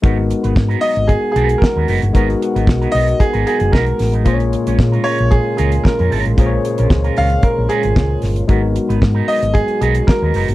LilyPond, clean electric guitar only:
\new Staff \with { instrumentName = "Clean electric guitar" } { \time 4/4 \key gis \dorian \tempo 4 = 114 <fis b dis' ais'>16 r8 <fis b dis' b'>16 r16 <fis b dis' ais'>16 <fis b dis' ais'>16 r8. <fis b dis' ais'>8 r16 <fis b dis' ais'>16 <fis b dis' ais'>16 r16 | <fis b dis' ais'>16 r8 <fis b dis' ais'>16 r16 <fis b dis' ais'>16 <fis b dis' ais'>16 r8 <fis b dis' ais'>16 <fis b dis' ais'>16 r16 <fis b dis' ais'>16 r8 <fis b dis' ais'>16 | <gis cis' eis' ais'>16 r8 <gis cis' eis' cis''>16 r16 <gis cis' eis' ais'>16 <gis cis' eis' ais'>16 r8. <gis cis' eis' ais'>16 r8 <gis cis' eis' ais'>16 <gis cis' eis' ais'>8 | <gis cis' eis' ais'>16 r8 <gis cis' eis' ais'>16 r16 <gis cis' eis' ais'>16 <gis cis' eis' ais'>16 r8. <gis cis' eis' ais'>16 r4 r16 |
<fis b dis' ais'>16 r8 <fis b dis' b'>16 r16 <fis b dis' ais'>16 <fis b dis' ais'>16 r8. <fis b dis' ais'>16 r8 <fis b dis' ais'>16 <fis b dis' ais'>16 r16 | }